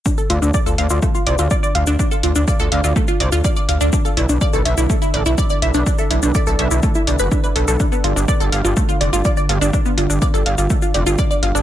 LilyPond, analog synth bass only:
\new Staff \with { instrumentName = "Analog synth bass" } { \clef bass \time 4/4 \key d \dorian \tempo 4 = 124 r8 d,16 d,16 r16 d,16 d,16 d,16 r8 c,16 d,16 r8 d,16 d,16 | r8 d,16 d,16 r16 d,16 d,16 d,16 r8 c,16 d,16 r8 d,16 d,16 | r8 b,,16 b,,16 r16 b,,16 b,,16 b,,16 r8 a,,16 b,,16 r8 b,,16 b,,16 | r8 b,,16 b,,16 r16 b,,16 b,,16 b,,16 r8 b,,16 fis,,16 r8 b,,16 b,,16 |
r8 g,,16 g,,16 r16 g,,16 g,,16 g,,16 r8 f,,16 g,,16 r8 g,,16 g,,16 | r8 g,,16 g,,16 r16 g,,16 g,,16 g,,16 r8 f,,16 g,,16 r8 g,,16 g,,16 | }